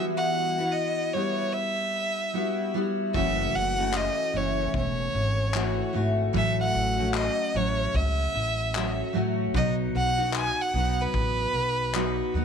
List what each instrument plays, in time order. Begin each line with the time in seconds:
Already playing: steel-string acoustic guitar E3 G3 B3 E4 F#4
0.17 violin F#5
0.58 steel-string acoustic guitar B3 E4 F#4
0.72 violin D#5
1.13 steel-string acoustic guitar G3 B3 E4 F#4, violin C#5
1.52 violin E5
2.33 steel-string acoustic guitar G3 B3 E4 F#4
2.74 steel-string acoustic guitar G3 B3 E4 F#4
3.14 upright bass F#1, steel-string acoustic guitar F#2 C#3 E3 A3 C#4 F#4, violin E5, kick
3.54 upright bass F#1, violin F#5
3.78 steel-string acoustic guitar E3 A3 C#4 F#4
3.94 violin D#5, clap
4.33 upright bass F#1, steel-string acoustic guitar E3 A3 C#4 F#4, violin C#5
4.73 upright bass E1, violin C#5, kick
5.15 upright bass G#1
5.54 steel-string acoustic guitar E3 A3 C#4 F#4, clap
5.93 upright bass G#1, steel-string acoustic guitar E3 A3 C#4 F#4
6.33 upright bass A1, steel-string acoustic guitar A2 E3 F#3 A3 C#4 F#4, violin E5, kick
6.61 violin F#5
6.75 upright bass A1
6.97 steel-string acoustic guitar F#3 A3 C#4 F#4
7.14 violin D#5, clap
7.54 upright bass A1, steel-string acoustic guitar F#3 A3 C#4 F#4, violin C#5
7.94 upright bass C#2, violin E5, kick
8.34 upright bass A1
8.75 steel-string acoustic guitar F#3 A3 C#4 F#4, clap
9.13 upright bass A1, steel-string acoustic guitar F#3 A3 C#4 F#4
9.54 upright bass B1, steel-string acoustic guitar B2 F#3 B3 D#4 F#4, violin D#5, kick
9.95 upright bass B1, violin F#5
10.18 steel-string acoustic guitar B3 D#4 F#4
10.33 clap
10.38 violin G#5
10.61 violin F#5
10.74 upright bass B1, steel-string acoustic guitar F#3 B3 D#4 F#4
11.02 violin B4
11.13 upright bass A1, kick
11.53 upright bass B1
11.94 steel-string acoustic guitar F#3 B3 D#4 F#4, clap
12.34 upright bass D#2, steel-string acoustic guitar F#3 B3 D#4 F#4